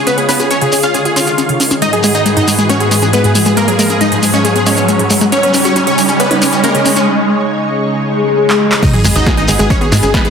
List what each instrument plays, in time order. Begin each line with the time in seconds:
Already playing: analog synth pad C#3 G#3 F4 C#5, riser
0.07 supersaw synth B3 B4, synth arpeggio sound C#4, closed hi-hat, shekere
0.18 synth arpeggio sound B3, supersaw synth G#4, closed hi-hat
0.29 supersaw synth B3 B4, synth arpeggio sound C#4, open hi-hat, shekere
0.39 synth arpeggio sound F4, supersaw synth G#4, closed hi-hat, shekere
0.51 synth arpeggio sound C#4, supersaw synth C#4 C#5, closed hi-hat, shekere
0.61 synth arpeggio sound C#3, supersaw synth G#4, closed hi-hat
0.72 synth arpeggio sound C#4, supersaw synth G#4, open hi-hat, shekere
0.83 synth arpeggio sound C#4, supersaw synth F4 F5, closed hi-hat, shekere
0.94 synth arpeggio sound C#4, supersaw synth G#4, closed hi-hat, shekere
1.05 synth arpeggio sound F4, supersaw synth G#4, closed hi-hat
1.16 synth arpeggio sound C#4, supersaw synth F4 F5, open hi-hat, shekere
1.27 synth arpeggio sound F4, closed hi-hat, shekere
1.38 synth arpeggio sound C#4, closed hi-hat, shekere
1.49 synth arpeggio sound C#3, closed hi-hat
1.60 synth arpeggio sound C#4, open hi-hat, shekere
1.71 synth arpeggio sound C#4, closed hi-hat, shekere
1.82 analog synth pad G#2 F#4 B4, synth arpeggio sound G#3, supersaw synth D#4 D#5, closed hi-hat, shekere
1.93 synth arpeggio sound F#3, supersaw synth G#4, closed hi-hat
2.03 synth arpeggio sound G#3, supersaw synth G#4, open hi-hat, shekere
2.15 synth arpeggio sound C#4, supersaw synth D#4 D#5, closed hi-hat, shekere
2.26 synth arpeggio sound G#3, supersaw synth G#4, closed hi-hat, shekere
2.37 synth arpeggio sound G#2, supersaw synth D#4 D#5, closed hi-hat
2.47 synth arpeggio sound G#3, supersaw synth G#4, open hi-hat, shekere
2.58 synth arpeggio sound G#3, supersaw synth G#4, closed hi-hat, shekere
2.69 synth arpeggio sound G#3, supersaw synth C#4 C#5, closed hi-hat, shekere
2.80 synth arpeggio sound B3, supersaw synth G#4, closed hi-hat
2.91 synth arpeggio sound G#3, supersaw synth G#4, open hi-hat, shekere
3.02 synth arpeggio sound C#4, supersaw synth G#4, closed hi-hat, shekere
3.13 synth arpeggio sound G#3, supersaw synth B3 B4, closed hi-hat, shekere
3.24 synth arpeggio sound G#2, supersaw synth G#4, closed hi-hat
3.35 synth arpeggio sound G#3, supersaw synth G#4, open hi-hat, shekere
3.46 synth arpeggio sound G#3, supersaw synth G#4, closed hi-hat, shekere
3.57 synth arpeggio sound G#3, supersaw synth A#3 A#4, analog synth pad G#4, closed hi-hat, shekere
3.68 synth arpeggio sound F#3, supersaw synth G#4, closed hi-hat
3.79 synth arpeggio sound G#3, supersaw synth A#3 A#4, open hi-hat, shekere
3.90 synth arpeggio sound C#4, supersaw synth G#4, closed hi-hat, shekere
4.01 synth arpeggio sound G#3, supersaw synth D#4 D#5, closed hi-hat, shekere
4.12 synth arpeggio sound G#2, supersaw synth G#4, closed hi-hat
4.23 synth arpeggio sound G#3, supersaw synth G#4, open hi-hat, shekere
4.34 synth arpeggio sound G#3, supersaw synth C#4 C#5, closed hi-hat, shekere
4.44 synth arpeggio sound G#3, supersaw synth G#4, closed hi-hat, shekere
4.55 synth arpeggio sound B3, supersaw synth G#4, closed hi-hat
4.66 synth arpeggio sound G#3, supersaw synth C#4 C#5, open hi-hat, shekere
4.77 synth arpeggio sound C#4, closed hi-hat, shekere
4.88 synth arpeggio sound G#3, closed hi-hat, shekere
4.99 synth arpeggio sound G#2, closed hi-hat
5.10 synth arpeggio sound G#3, open hi-hat, shekere
5.21 synth arpeggio sound G#3, closed hi-hat, shekere
5.32 analog synth pad C#3 G#3 D#4 C#5, supersaw synth C#4 C#5, synth arpeggio sound C#4, closed hi-hat, shekere
5.43 synth arpeggio sound B3, supersaw synth C#4, closed hi-hat
5.53 supersaw synth C#4, synth arpeggio sound C#4, open hi-hat, shekere
5.65 supersaw synth C#4 C#5, synth arpeggio sound F#4, closed hi-hat, shekere
5.76 synth arpeggio sound C#4, supersaw synth C#4, closed hi-hat, shekere
5.87 synth arpeggio sound C#3, supersaw synth C#4 C#5, closed hi-hat
5.98 synth arpeggio sound C#4, supersaw synth C#4, open hi-hat, shekere
6.08 synth arpeggio sound C#4, supersaw synth C#4, closed hi-hat, shekere
6.20 supersaw synth B3 B4, synth arpeggio sound C#4, closed hi-hat, shekere
6.31 supersaw synth C#4, synth arpeggio sound D#4, closed hi-hat
6.42 synth arpeggio sound C#4, supersaw synth C#4, open hi-hat, shekere
6.53 supersaw synth C#4, synth arpeggio sound F#4, closed hi-hat, shekere
6.63 supersaw synth A#3 A#4, synth arpeggio sound C#4, closed hi-hat, shekere
6.75 synth arpeggio sound C#3, supersaw synth C#4, closed hi-hat
6.85 supersaw synth C#4, synth arpeggio sound C#4, open hi-hat, shekere
6.96 synth arpeggio sound C#4, supersaw synth C#4, closed hi-hat, shekere
7.95 swell
8.50 clap
8.72 clap
8.82 synth arpeggio sound G#3, analog synth pad G#3 D#4 F#4 B4, supersaw synth D#4 D#5, kick, closed hi-hat, crash, ride, sub drop, shekere
8.94 synth arpeggio sound F#3, supersaw synth G#4, closed hi-hat
9.04 analog synth bass G#1, synth arpeggio sound G#3, supersaw synth G#4, open hi-hat, ride, shekere
9.15 analog synth bass G#1, synth arpeggio sound C#4, supersaw synth D#4 D#5, closed hi-hat, shekere
9.26 synth arpeggio sound G#3, supersaw synth G#4, kick, snare, closed hi-hat, shekere
9.37 synth arpeggio sound G#2, supersaw synth D#4 D#5, closed hi-hat
9.48 analog synth bass G#1, synth arpeggio sound G#3, supersaw synth G#4, open hi-hat, ride, shekere
9.59 analog synth bass G#1, synth arpeggio sound G#3, supersaw synth G#4, closed hi-hat, shekere
9.70 synth arpeggio sound G#3, supersaw synth C#4 C#5, kick, closed hi-hat, ride, shekere
9.81 synth arpeggio sound B3, supersaw synth G#4, closed hi-hat
9.92 analog synth bass G#2, synth arpeggio sound G#3, supersaw synth G#4, snare, open hi-hat, ride, shekere
10.02 analog synth bass G#1, synth arpeggio sound C#4, supersaw synth G#4, closed hi-hat, shekere
10.14 synth arpeggio sound G#3, supersaw synth B3 B4, kick, snare, closed hi-hat, ride, shekere
10.25 synth arpeggio sound G#2, supersaw synth G#4, closed hi-hat